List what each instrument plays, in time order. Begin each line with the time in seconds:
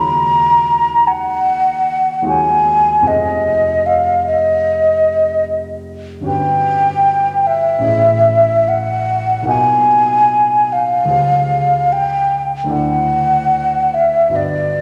Already playing: grand piano D#2 G#3 F4 F#4 C#5, flute A#5
1.07 flute F#5
2.22 grand piano D#2 G#3 F4
2.26 grand piano F#4 C#5, flute G#5
3.02 grand piano F1 C4 F4 G#4
3.07 grand piano C5, flute D#5
3.86 flute F5
4.26 flute D#5
6.20 grand piano G1 C#4 F#4
6.25 grand piano G4 B4, flute G5
7.47 flute E5
7.79 grand piano A1 C#4 E4 G#4
7.84 grand piano D#5
8.68 flute F#5
9.42 grand piano B1 A#3 F4
9.47 grand piano F#4 D#5, flute G#5
10.72 flute F5
11.05 grand piano C#2 G#3 F4
11.10 grand piano G4 C5
11.92 flute G5
12.64 grand piano D2 D4 E4
12.68 grand piano A4 D5, flute F#5
13.94 flute E5
14.29 grand piano G1 D4 F#4 B4
14.35 grand piano D5, flute D5